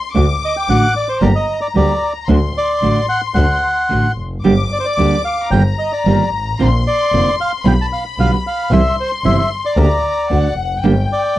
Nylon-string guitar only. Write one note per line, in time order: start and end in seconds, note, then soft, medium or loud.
0.15 0.24 D3 medium
0.15 0.24 A3 medium
0.15 0.24 D4 medium
0.15 0.25 F#4 medium
0.68 0.85 D3 soft
0.68 0.85 A3 soft
0.68 0.86 D4 soft
0.68 0.86 F#4 medium
1.21 1.30 D3 medium
1.21 1.30 G3 medium
1.21 1.30 A#3 medium
1.21 1.30 D4 medium
1.21 1.31 G4 medium
1.75 1.91 D3 soft
1.75 1.92 G3 soft
1.75 1.92 A#3 soft
1.75 1.92 D4 medium
1.75 1.92 G4 medium
2.28 2.37 D3 medium
2.28 2.37 A3 medium
2.28 2.37 D4 medium
2.28 2.38 F#4 medium
2.82 2.98 D3 soft
2.82 2.99 A3 soft
2.82 2.99 D4 soft
2.82 2.99 F#4 soft
3.36 3.44 D3 medium
3.36 3.45 A3 medium
3.36 3.45 D4 medium
3.36 3.45 F#4 medium
3.89 4.06 D3 soft
3.89 4.07 A3 soft
3.89 4.07 D4 soft
3.89 4.07 F#4 soft
4.44 4.53 D3 medium
4.44 4.53 G3 medium
4.44 4.53 A#3 medium
4.44 4.53 D4 medium
4.44 4.53 G4 medium
4.98 5.15 D3 soft
4.98 5.15 G3 soft
4.98 5.15 A#3 soft
4.98 5.15 D4 soft
4.98 5.15 G4 soft
5.52 5.61 D#3 medium
5.52 5.61 G3 medium
5.52 5.61 A#3 medium
5.52 5.61 F4 medium
5.52 5.61 G4 medium
6.06 6.22 D#3 soft
6.06 6.22 G3 soft
6.06 6.23 A#3 soft
6.06 6.23 F4 soft
6.06 6.23 G4 soft
6.59 6.68 D3 medium
6.59 6.68 A#3 medium
6.59 6.68 C4 medium
6.59 6.68 F4 medium
7.12 7.29 D3 soft
7.12 7.29 A#3 soft
7.12 7.29 C4 soft
7.12 7.29 F4 soft
7.65 7.73 B2 medium
7.65 7.73 D3 medium
7.65 7.73 G3 medium
7.65 7.74 B3 medium
7.65 7.74 F4 medium
8.18 8.34 B2 soft
8.18 8.35 D3 medium
8.18 8.35 G3 soft
8.18 8.35 B3 medium
8.18 8.35 F4 soft
8.71 8.80 C3 medium
8.71 8.80 E3 medium
8.71 8.80 G3 medium
8.71 8.80 C4 medium
8.71 8.81 E4 medium
9.24 9.40 C3 soft
9.24 9.41 E3 medium
9.24 9.41 G3 soft
9.24 9.41 C4 soft
9.24 9.41 E4 medium
9.77 9.86 D3 medium
9.77 9.86 A#3 medium
9.77 9.86 D4 medium
9.77 9.86 G4 medium
10.30 10.47 D3 soft
10.30 10.47 A3 soft
10.30 10.47 D4 soft
10.30 10.48 F#4 soft
10.83 10.92 D3 medium
10.83 10.93 G3 medium
10.83 10.93 A#3 medium
10.83 10.93 D4 medium
10.83 10.93 G4 medium